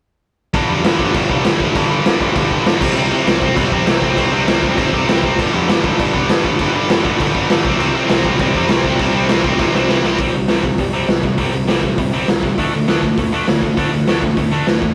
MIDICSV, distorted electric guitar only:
0, 0, Header, 1, 2, 480
1, 0, Start_track
1, 0, Tempo, 302419
1, 865, Time_signature, 4, 2, 24, 8
1, 10947, Tempo, 299252
1, 23851, End_track
2, 0, Start_track
2, 0, Title_t, "Distorted electric guitar"
2, 0, Program_c, 0, 30
2, 856, Note_on_c, 0, 43, 82
2, 865, Note_on_c, 0, 50, 92
2, 871, Note_on_c, 0, 55, 92
2, 1082, Note_off_c, 0, 50, 0
2, 1088, Note_off_c, 0, 55, 0
2, 1094, Note_on_c, 0, 55, 86
2, 1101, Note_on_c, 0, 50, 84
2, 1107, Note_off_c, 0, 43, 0
2, 1113, Note_on_c, 0, 43, 81
2, 1329, Note_off_c, 0, 43, 0
2, 1338, Note_off_c, 0, 50, 0
2, 1348, Note_on_c, 0, 43, 94
2, 1356, Note_off_c, 0, 55, 0
2, 1357, Note_on_c, 0, 50, 91
2, 1362, Note_on_c, 0, 55, 96
2, 1577, Note_off_c, 0, 50, 0
2, 1579, Note_off_c, 0, 55, 0
2, 1583, Note_off_c, 0, 43, 0
2, 1585, Note_on_c, 0, 55, 84
2, 1596, Note_on_c, 0, 50, 79
2, 1602, Note_on_c, 0, 43, 80
2, 1797, Note_off_c, 0, 43, 0
2, 1804, Note_off_c, 0, 50, 0
2, 1816, Note_on_c, 0, 43, 96
2, 1823, Note_on_c, 0, 50, 102
2, 1826, Note_off_c, 0, 55, 0
2, 1833, Note_on_c, 0, 55, 100
2, 2047, Note_off_c, 0, 50, 0
2, 2053, Note_off_c, 0, 55, 0
2, 2059, Note_on_c, 0, 55, 82
2, 2061, Note_off_c, 0, 43, 0
2, 2067, Note_on_c, 0, 50, 76
2, 2080, Note_on_c, 0, 43, 71
2, 2272, Note_off_c, 0, 43, 0
2, 2288, Note_off_c, 0, 50, 0
2, 2291, Note_on_c, 0, 43, 106
2, 2307, Note_on_c, 0, 50, 115
2, 2308, Note_off_c, 0, 55, 0
2, 2315, Note_on_c, 0, 55, 102
2, 2520, Note_off_c, 0, 50, 0
2, 2525, Note_off_c, 0, 55, 0
2, 2528, Note_off_c, 0, 43, 0
2, 2531, Note_on_c, 0, 55, 80
2, 2539, Note_on_c, 0, 50, 65
2, 2547, Note_on_c, 0, 43, 70
2, 2751, Note_off_c, 0, 43, 0
2, 2763, Note_off_c, 0, 50, 0
2, 2770, Note_on_c, 0, 43, 90
2, 2782, Note_on_c, 0, 50, 108
2, 2783, Note_off_c, 0, 55, 0
2, 2789, Note_on_c, 0, 55, 94
2, 3007, Note_off_c, 0, 50, 0
2, 3009, Note_off_c, 0, 55, 0
2, 3015, Note_on_c, 0, 55, 97
2, 3017, Note_off_c, 0, 43, 0
2, 3026, Note_on_c, 0, 50, 81
2, 3036, Note_on_c, 0, 43, 78
2, 3237, Note_off_c, 0, 43, 0
2, 3247, Note_off_c, 0, 50, 0
2, 3256, Note_on_c, 0, 43, 100
2, 3265, Note_off_c, 0, 55, 0
2, 3266, Note_on_c, 0, 50, 102
2, 3271, Note_on_c, 0, 55, 99
2, 3489, Note_off_c, 0, 50, 0
2, 3491, Note_off_c, 0, 55, 0
2, 3497, Note_on_c, 0, 55, 93
2, 3498, Note_off_c, 0, 43, 0
2, 3508, Note_on_c, 0, 50, 81
2, 3517, Note_on_c, 0, 43, 77
2, 3721, Note_off_c, 0, 43, 0
2, 3732, Note_off_c, 0, 50, 0
2, 3740, Note_on_c, 0, 43, 92
2, 3752, Note_off_c, 0, 55, 0
2, 3752, Note_on_c, 0, 50, 87
2, 3759, Note_on_c, 0, 55, 107
2, 3967, Note_off_c, 0, 50, 0
2, 3968, Note_off_c, 0, 55, 0
2, 3975, Note_off_c, 0, 43, 0
2, 3975, Note_on_c, 0, 55, 82
2, 3986, Note_on_c, 0, 50, 83
2, 3995, Note_on_c, 0, 43, 80
2, 4205, Note_off_c, 0, 43, 0
2, 4216, Note_off_c, 0, 50, 0
2, 4224, Note_on_c, 0, 43, 97
2, 4232, Note_off_c, 0, 55, 0
2, 4235, Note_on_c, 0, 50, 103
2, 4238, Note_on_c, 0, 55, 106
2, 4451, Note_off_c, 0, 43, 0
2, 4452, Note_off_c, 0, 50, 0
2, 4459, Note_on_c, 0, 48, 84
2, 4469, Note_off_c, 0, 55, 0
2, 4475, Note_on_c, 0, 55, 100
2, 4482, Note_on_c, 0, 60, 88
2, 4693, Note_off_c, 0, 60, 0
2, 4699, Note_on_c, 0, 60, 90
2, 4703, Note_off_c, 0, 55, 0
2, 4710, Note_off_c, 0, 48, 0
2, 4710, Note_on_c, 0, 55, 90
2, 4716, Note_on_c, 0, 48, 76
2, 4932, Note_off_c, 0, 48, 0
2, 4939, Note_on_c, 0, 48, 90
2, 4942, Note_off_c, 0, 55, 0
2, 4948, Note_on_c, 0, 55, 89
2, 4952, Note_off_c, 0, 60, 0
2, 4958, Note_on_c, 0, 60, 99
2, 5181, Note_off_c, 0, 60, 0
2, 5187, Note_on_c, 0, 60, 100
2, 5189, Note_off_c, 0, 55, 0
2, 5196, Note_on_c, 0, 55, 89
2, 5204, Note_off_c, 0, 48, 0
2, 5210, Note_on_c, 0, 48, 83
2, 5413, Note_off_c, 0, 48, 0
2, 5428, Note_off_c, 0, 60, 0
2, 5432, Note_on_c, 0, 48, 85
2, 5436, Note_off_c, 0, 55, 0
2, 5442, Note_on_c, 0, 55, 93
2, 5447, Note_on_c, 0, 60, 102
2, 5642, Note_off_c, 0, 60, 0
2, 5655, Note_off_c, 0, 48, 0
2, 5656, Note_off_c, 0, 55, 0
2, 5661, Note_on_c, 0, 60, 112
2, 5663, Note_on_c, 0, 55, 102
2, 5674, Note_on_c, 0, 48, 89
2, 5887, Note_off_c, 0, 48, 0
2, 5906, Note_on_c, 0, 48, 82
2, 5907, Note_off_c, 0, 60, 0
2, 5908, Note_off_c, 0, 55, 0
2, 5914, Note_on_c, 0, 55, 96
2, 5926, Note_on_c, 0, 60, 88
2, 6128, Note_off_c, 0, 60, 0
2, 6147, Note_on_c, 0, 60, 98
2, 6149, Note_off_c, 0, 48, 0
2, 6152, Note_off_c, 0, 55, 0
2, 6158, Note_on_c, 0, 55, 96
2, 6169, Note_on_c, 0, 48, 90
2, 6364, Note_off_c, 0, 48, 0
2, 6383, Note_on_c, 0, 48, 67
2, 6385, Note_off_c, 0, 60, 0
2, 6389, Note_off_c, 0, 55, 0
2, 6395, Note_on_c, 0, 55, 76
2, 6404, Note_on_c, 0, 60, 79
2, 6602, Note_off_c, 0, 60, 0
2, 6621, Note_on_c, 0, 60, 113
2, 6627, Note_off_c, 0, 48, 0
2, 6632, Note_off_c, 0, 55, 0
2, 6638, Note_on_c, 0, 55, 82
2, 6646, Note_on_c, 0, 48, 80
2, 6848, Note_off_c, 0, 48, 0
2, 6864, Note_off_c, 0, 60, 0
2, 6867, Note_on_c, 0, 48, 84
2, 6873, Note_off_c, 0, 55, 0
2, 6879, Note_on_c, 0, 55, 85
2, 6883, Note_on_c, 0, 60, 107
2, 7079, Note_off_c, 0, 60, 0
2, 7098, Note_on_c, 0, 60, 90
2, 7099, Note_off_c, 0, 48, 0
2, 7106, Note_off_c, 0, 55, 0
2, 7112, Note_on_c, 0, 55, 99
2, 7118, Note_on_c, 0, 48, 81
2, 7326, Note_off_c, 0, 48, 0
2, 7345, Note_off_c, 0, 60, 0
2, 7345, Note_on_c, 0, 48, 76
2, 7349, Note_off_c, 0, 55, 0
2, 7356, Note_on_c, 0, 55, 89
2, 7364, Note_on_c, 0, 60, 84
2, 7563, Note_off_c, 0, 60, 0
2, 7581, Note_off_c, 0, 48, 0
2, 7583, Note_on_c, 0, 60, 102
2, 7585, Note_off_c, 0, 55, 0
2, 7591, Note_on_c, 0, 55, 91
2, 7600, Note_on_c, 0, 48, 81
2, 7805, Note_off_c, 0, 48, 0
2, 7822, Note_off_c, 0, 60, 0
2, 7824, Note_on_c, 0, 48, 81
2, 7831, Note_off_c, 0, 55, 0
2, 7838, Note_on_c, 0, 55, 82
2, 7841, Note_on_c, 0, 60, 81
2, 8048, Note_off_c, 0, 60, 0
2, 8067, Note_off_c, 0, 48, 0
2, 8067, Note_on_c, 0, 60, 102
2, 8074, Note_off_c, 0, 55, 0
2, 8081, Note_on_c, 0, 55, 97
2, 8086, Note_on_c, 0, 48, 96
2, 8286, Note_off_c, 0, 48, 0
2, 8302, Note_off_c, 0, 60, 0
2, 8305, Note_on_c, 0, 48, 75
2, 8306, Note_off_c, 0, 55, 0
2, 8313, Note_on_c, 0, 55, 72
2, 8321, Note_on_c, 0, 60, 72
2, 8535, Note_off_c, 0, 48, 0
2, 8543, Note_off_c, 0, 60, 0
2, 8546, Note_on_c, 0, 43, 76
2, 8556, Note_on_c, 0, 50, 81
2, 8562, Note_off_c, 0, 55, 0
2, 8569, Note_on_c, 0, 55, 99
2, 8781, Note_off_c, 0, 50, 0
2, 8786, Note_off_c, 0, 55, 0
2, 8792, Note_on_c, 0, 55, 96
2, 8800, Note_on_c, 0, 50, 80
2, 8803, Note_off_c, 0, 43, 0
2, 8809, Note_on_c, 0, 43, 84
2, 9005, Note_off_c, 0, 43, 0
2, 9012, Note_off_c, 0, 50, 0
2, 9024, Note_on_c, 0, 43, 93
2, 9031, Note_on_c, 0, 50, 97
2, 9038, Note_off_c, 0, 55, 0
2, 9045, Note_on_c, 0, 55, 103
2, 9257, Note_off_c, 0, 55, 0
2, 9259, Note_off_c, 0, 50, 0
2, 9263, Note_on_c, 0, 55, 92
2, 9266, Note_off_c, 0, 43, 0
2, 9278, Note_on_c, 0, 50, 82
2, 9285, Note_on_c, 0, 43, 72
2, 9486, Note_off_c, 0, 43, 0
2, 9496, Note_off_c, 0, 50, 0
2, 9505, Note_on_c, 0, 43, 89
2, 9515, Note_on_c, 0, 50, 97
2, 9516, Note_off_c, 0, 55, 0
2, 9522, Note_on_c, 0, 55, 109
2, 9733, Note_off_c, 0, 50, 0
2, 9735, Note_off_c, 0, 55, 0
2, 9741, Note_on_c, 0, 55, 93
2, 9743, Note_off_c, 0, 43, 0
2, 9752, Note_on_c, 0, 50, 72
2, 9762, Note_on_c, 0, 43, 75
2, 9959, Note_off_c, 0, 43, 0
2, 9969, Note_off_c, 0, 50, 0
2, 9978, Note_on_c, 0, 43, 108
2, 9988, Note_off_c, 0, 55, 0
2, 9988, Note_on_c, 0, 50, 94
2, 9994, Note_on_c, 0, 55, 105
2, 10213, Note_off_c, 0, 50, 0
2, 10218, Note_off_c, 0, 55, 0
2, 10220, Note_off_c, 0, 43, 0
2, 10224, Note_on_c, 0, 55, 84
2, 10232, Note_on_c, 0, 50, 71
2, 10239, Note_on_c, 0, 43, 76
2, 10444, Note_off_c, 0, 43, 0
2, 10454, Note_off_c, 0, 50, 0
2, 10463, Note_on_c, 0, 43, 80
2, 10472, Note_off_c, 0, 55, 0
2, 10473, Note_on_c, 0, 50, 101
2, 10479, Note_on_c, 0, 55, 94
2, 10682, Note_off_c, 0, 50, 0
2, 10684, Note_off_c, 0, 55, 0
2, 10689, Note_off_c, 0, 43, 0
2, 10691, Note_on_c, 0, 55, 103
2, 10701, Note_on_c, 0, 50, 88
2, 10708, Note_on_c, 0, 43, 81
2, 10916, Note_off_c, 0, 43, 0
2, 10931, Note_off_c, 0, 50, 0
2, 10935, Note_on_c, 0, 43, 104
2, 10948, Note_off_c, 0, 55, 0
2, 10950, Note_on_c, 0, 50, 100
2, 10955, Note_on_c, 0, 55, 112
2, 11168, Note_off_c, 0, 50, 0
2, 11170, Note_off_c, 0, 55, 0
2, 11174, Note_off_c, 0, 43, 0
2, 11176, Note_on_c, 0, 55, 87
2, 11187, Note_on_c, 0, 50, 92
2, 11193, Note_on_c, 0, 43, 77
2, 11407, Note_off_c, 0, 43, 0
2, 11410, Note_off_c, 0, 50, 0
2, 11426, Note_on_c, 0, 43, 89
2, 11430, Note_on_c, 0, 50, 95
2, 11436, Note_off_c, 0, 55, 0
2, 11443, Note_on_c, 0, 55, 110
2, 11658, Note_off_c, 0, 50, 0
2, 11659, Note_off_c, 0, 55, 0
2, 11665, Note_off_c, 0, 43, 0
2, 11666, Note_on_c, 0, 55, 90
2, 11678, Note_on_c, 0, 50, 78
2, 11684, Note_on_c, 0, 43, 82
2, 11886, Note_off_c, 0, 43, 0
2, 11901, Note_off_c, 0, 50, 0
2, 11905, Note_on_c, 0, 43, 97
2, 11917, Note_off_c, 0, 55, 0
2, 11921, Note_on_c, 0, 50, 100
2, 11923, Note_on_c, 0, 55, 116
2, 12135, Note_off_c, 0, 43, 0
2, 12142, Note_off_c, 0, 50, 0
2, 12160, Note_on_c, 0, 48, 83
2, 12165, Note_off_c, 0, 55, 0
2, 12171, Note_on_c, 0, 55, 81
2, 12176, Note_on_c, 0, 60, 94
2, 12390, Note_off_c, 0, 60, 0
2, 12396, Note_on_c, 0, 60, 90
2, 12400, Note_off_c, 0, 55, 0
2, 12407, Note_on_c, 0, 55, 98
2, 12410, Note_off_c, 0, 48, 0
2, 12416, Note_on_c, 0, 48, 86
2, 12633, Note_off_c, 0, 48, 0
2, 12639, Note_on_c, 0, 48, 88
2, 12646, Note_off_c, 0, 55, 0
2, 12652, Note_on_c, 0, 55, 102
2, 12654, Note_off_c, 0, 60, 0
2, 12660, Note_on_c, 0, 60, 91
2, 12860, Note_off_c, 0, 60, 0
2, 12866, Note_on_c, 0, 60, 118
2, 12868, Note_off_c, 0, 55, 0
2, 12874, Note_on_c, 0, 55, 86
2, 12877, Note_off_c, 0, 48, 0
2, 12884, Note_on_c, 0, 48, 82
2, 13105, Note_off_c, 0, 48, 0
2, 13112, Note_on_c, 0, 48, 84
2, 13114, Note_off_c, 0, 55, 0
2, 13120, Note_on_c, 0, 55, 96
2, 13123, Note_off_c, 0, 60, 0
2, 13129, Note_on_c, 0, 60, 83
2, 13354, Note_off_c, 0, 60, 0
2, 13360, Note_on_c, 0, 60, 112
2, 13365, Note_off_c, 0, 55, 0
2, 13371, Note_off_c, 0, 48, 0
2, 13372, Note_on_c, 0, 55, 103
2, 13377, Note_on_c, 0, 48, 78
2, 13601, Note_off_c, 0, 48, 0
2, 13607, Note_on_c, 0, 48, 74
2, 13609, Note_off_c, 0, 55, 0
2, 13616, Note_on_c, 0, 55, 84
2, 13617, Note_off_c, 0, 60, 0
2, 13623, Note_on_c, 0, 60, 98
2, 13839, Note_off_c, 0, 60, 0
2, 13846, Note_on_c, 0, 60, 107
2, 13852, Note_off_c, 0, 55, 0
2, 13858, Note_on_c, 0, 55, 94
2, 13859, Note_off_c, 0, 48, 0
2, 13866, Note_on_c, 0, 48, 97
2, 14075, Note_off_c, 0, 48, 0
2, 14082, Note_on_c, 0, 48, 73
2, 14088, Note_off_c, 0, 55, 0
2, 14094, Note_off_c, 0, 60, 0
2, 14094, Note_on_c, 0, 55, 85
2, 14101, Note_on_c, 0, 60, 82
2, 14295, Note_off_c, 0, 60, 0
2, 14310, Note_off_c, 0, 55, 0
2, 14314, Note_off_c, 0, 48, 0
2, 14314, Note_on_c, 0, 60, 85
2, 14330, Note_on_c, 0, 55, 88
2, 14333, Note_on_c, 0, 48, 82
2, 14528, Note_off_c, 0, 48, 0
2, 14539, Note_off_c, 0, 55, 0
2, 14547, Note_on_c, 0, 48, 90
2, 14550, Note_off_c, 0, 60, 0
2, 14559, Note_on_c, 0, 55, 89
2, 14569, Note_on_c, 0, 60, 95
2, 14780, Note_off_c, 0, 60, 0
2, 14787, Note_off_c, 0, 55, 0
2, 14796, Note_off_c, 0, 48, 0
2, 14799, Note_on_c, 0, 60, 106
2, 14807, Note_on_c, 0, 55, 82
2, 14815, Note_on_c, 0, 48, 89
2, 15019, Note_off_c, 0, 48, 0
2, 15029, Note_off_c, 0, 55, 0
2, 15038, Note_off_c, 0, 60, 0
2, 15038, Note_on_c, 0, 48, 89
2, 15049, Note_on_c, 0, 55, 73
2, 15058, Note_on_c, 0, 60, 96
2, 15256, Note_off_c, 0, 60, 0
2, 15266, Note_off_c, 0, 55, 0
2, 15274, Note_off_c, 0, 48, 0
2, 15275, Note_on_c, 0, 60, 102
2, 15285, Note_on_c, 0, 55, 80
2, 15293, Note_on_c, 0, 48, 74
2, 15492, Note_off_c, 0, 48, 0
2, 15501, Note_off_c, 0, 55, 0
2, 15505, Note_off_c, 0, 60, 0
2, 15511, Note_on_c, 0, 48, 79
2, 15521, Note_on_c, 0, 55, 88
2, 15525, Note_on_c, 0, 60, 95
2, 15724, Note_off_c, 0, 60, 0
2, 15736, Note_off_c, 0, 55, 0
2, 15740, Note_off_c, 0, 48, 0
2, 15743, Note_on_c, 0, 60, 115
2, 15755, Note_on_c, 0, 55, 103
2, 15759, Note_on_c, 0, 48, 91
2, 15964, Note_off_c, 0, 48, 0
2, 15979, Note_off_c, 0, 55, 0
2, 15981, Note_off_c, 0, 60, 0
2, 15983, Note_on_c, 0, 48, 70
2, 15998, Note_on_c, 0, 55, 73
2, 16000, Note_on_c, 0, 60, 77
2, 16206, Note_off_c, 0, 48, 0
2, 16214, Note_off_c, 0, 55, 0
2, 16221, Note_off_c, 0, 60, 0
2, 16225, Note_on_c, 0, 48, 79
2, 16234, Note_on_c, 0, 55, 81
2, 16240, Note_on_c, 0, 60, 90
2, 16453, Note_off_c, 0, 48, 0
2, 16457, Note_off_c, 0, 55, 0
2, 16460, Note_off_c, 0, 60, 0
2, 16479, Note_on_c, 0, 48, 62
2, 16485, Note_on_c, 0, 55, 77
2, 16684, Note_off_c, 0, 48, 0
2, 16693, Note_off_c, 0, 55, 0
2, 16704, Note_on_c, 0, 48, 82
2, 16715, Note_on_c, 0, 55, 84
2, 16724, Note_on_c, 0, 60, 87
2, 16926, Note_off_c, 0, 48, 0
2, 16937, Note_off_c, 0, 55, 0
2, 16942, Note_off_c, 0, 60, 0
2, 16945, Note_on_c, 0, 48, 68
2, 16954, Note_on_c, 0, 55, 76
2, 17163, Note_off_c, 0, 48, 0
2, 17167, Note_off_c, 0, 55, 0
2, 17188, Note_on_c, 0, 48, 58
2, 17196, Note_on_c, 0, 55, 68
2, 17397, Note_off_c, 0, 48, 0
2, 17408, Note_off_c, 0, 55, 0
2, 17417, Note_on_c, 0, 48, 84
2, 17432, Note_on_c, 0, 55, 81
2, 17432, Note_on_c, 0, 60, 88
2, 17641, Note_off_c, 0, 48, 0
2, 17644, Note_off_c, 0, 55, 0
2, 17656, Note_off_c, 0, 60, 0
2, 17660, Note_on_c, 0, 48, 76
2, 17664, Note_on_c, 0, 55, 91
2, 17880, Note_off_c, 0, 48, 0
2, 17882, Note_off_c, 0, 55, 0
2, 17903, Note_on_c, 0, 48, 54
2, 17909, Note_on_c, 0, 55, 60
2, 18114, Note_off_c, 0, 48, 0
2, 18125, Note_off_c, 0, 55, 0
2, 18134, Note_on_c, 0, 48, 86
2, 18146, Note_on_c, 0, 55, 87
2, 18153, Note_on_c, 0, 60, 82
2, 18346, Note_off_c, 0, 48, 0
2, 18355, Note_off_c, 0, 55, 0
2, 18365, Note_on_c, 0, 48, 79
2, 18374, Note_on_c, 0, 55, 84
2, 18376, Note_off_c, 0, 60, 0
2, 18592, Note_off_c, 0, 48, 0
2, 18597, Note_off_c, 0, 55, 0
2, 18612, Note_on_c, 0, 48, 80
2, 18622, Note_on_c, 0, 55, 97
2, 18629, Note_on_c, 0, 60, 89
2, 18846, Note_off_c, 0, 48, 0
2, 18850, Note_off_c, 0, 55, 0
2, 18854, Note_off_c, 0, 60, 0
2, 18862, Note_on_c, 0, 48, 72
2, 18869, Note_on_c, 0, 55, 74
2, 19081, Note_off_c, 0, 48, 0
2, 19085, Note_off_c, 0, 55, 0
2, 19104, Note_on_c, 0, 48, 74
2, 19114, Note_on_c, 0, 55, 85
2, 19322, Note_off_c, 0, 48, 0
2, 19327, Note_off_c, 0, 55, 0
2, 19346, Note_on_c, 0, 48, 76
2, 19353, Note_on_c, 0, 55, 96
2, 19359, Note_on_c, 0, 60, 95
2, 19562, Note_off_c, 0, 48, 0
2, 19571, Note_off_c, 0, 55, 0
2, 19579, Note_off_c, 0, 60, 0
2, 19582, Note_on_c, 0, 48, 75
2, 19590, Note_on_c, 0, 55, 82
2, 19801, Note_off_c, 0, 48, 0
2, 19805, Note_off_c, 0, 55, 0
2, 19829, Note_on_c, 0, 48, 60
2, 19833, Note_on_c, 0, 55, 59
2, 20044, Note_off_c, 0, 48, 0
2, 20046, Note_off_c, 0, 55, 0
2, 20069, Note_on_c, 0, 50, 83
2, 20074, Note_on_c, 0, 57, 92
2, 20082, Note_on_c, 0, 62, 83
2, 20290, Note_off_c, 0, 50, 0
2, 20297, Note_off_c, 0, 57, 0
2, 20300, Note_off_c, 0, 62, 0
2, 20309, Note_on_c, 0, 50, 72
2, 20317, Note_on_c, 0, 57, 83
2, 20520, Note_off_c, 0, 50, 0
2, 20529, Note_off_c, 0, 57, 0
2, 20539, Note_on_c, 0, 50, 87
2, 20547, Note_on_c, 0, 57, 90
2, 20558, Note_on_c, 0, 62, 85
2, 20764, Note_off_c, 0, 50, 0
2, 20773, Note_off_c, 0, 57, 0
2, 20779, Note_off_c, 0, 62, 0
2, 20784, Note_on_c, 0, 50, 71
2, 20792, Note_on_c, 0, 57, 81
2, 21002, Note_off_c, 0, 50, 0
2, 21006, Note_off_c, 0, 57, 0
2, 21031, Note_on_c, 0, 50, 64
2, 21042, Note_on_c, 0, 57, 69
2, 21238, Note_off_c, 0, 50, 0
2, 21251, Note_off_c, 0, 57, 0
2, 21257, Note_on_c, 0, 50, 78
2, 21274, Note_on_c, 0, 57, 89
2, 21278, Note_on_c, 0, 62, 88
2, 21476, Note_off_c, 0, 50, 0
2, 21481, Note_off_c, 0, 57, 0
2, 21495, Note_on_c, 0, 50, 82
2, 21499, Note_off_c, 0, 62, 0
2, 21500, Note_on_c, 0, 57, 89
2, 21718, Note_off_c, 0, 50, 0
2, 21720, Note_off_c, 0, 57, 0
2, 21739, Note_on_c, 0, 50, 68
2, 21742, Note_on_c, 0, 57, 71
2, 21951, Note_off_c, 0, 50, 0
2, 21961, Note_off_c, 0, 57, 0
2, 21971, Note_on_c, 0, 50, 83
2, 21988, Note_on_c, 0, 57, 82
2, 21990, Note_on_c, 0, 62, 91
2, 22205, Note_off_c, 0, 50, 0
2, 22207, Note_off_c, 0, 57, 0
2, 22215, Note_off_c, 0, 62, 0
2, 22222, Note_on_c, 0, 50, 76
2, 22227, Note_on_c, 0, 57, 79
2, 22441, Note_off_c, 0, 50, 0
2, 22444, Note_off_c, 0, 57, 0
2, 22463, Note_on_c, 0, 50, 83
2, 22471, Note_on_c, 0, 57, 99
2, 22475, Note_on_c, 0, 62, 97
2, 22692, Note_off_c, 0, 50, 0
2, 22696, Note_off_c, 0, 57, 0
2, 22697, Note_off_c, 0, 62, 0
2, 22712, Note_on_c, 0, 50, 72
2, 22714, Note_on_c, 0, 57, 78
2, 22923, Note_off_c, 0, 50, 0
2, 22927, Note_off_c, 0, 57, 0
2, 22942, Note_on_c, 0, 50, 68
2, 22948, Note_on_c, 0, 57, 76
2, 23144, Note_off_c, 0, 50, 0
2, 23155, Note_off_c, 0, 57, 0
2, 23164, Note_on_c, 0, 50, 73
2, 23174, Note_on_c, 0, 57, 82
2, 23184, Note_on_c, 0, 62, 99
2, 23392, Note_off_c, 0, 50, 0
2, 23400, Note_off_c, 0, 57, 0
2, 23411, Note_on_c, 0, 50, 84
2, 23412, Note_off_c, 0, 62, 0
2, 23419, Note_on_c, 0, 57, 90
2, 23629, Note_off_c, 0, 50, 0
2, 23634, Note_off_c, 0, 57, 0
2, 23648, Note_on_c, 0, 50, 59
2, 23653, Note_on_c, 0, 57, 75
2, 23851, Note_off_c, 0, 50, 0
2, 23851, Note_off_c, 0, 57, 0
2, 23851, End_track
0, 0, End_of_file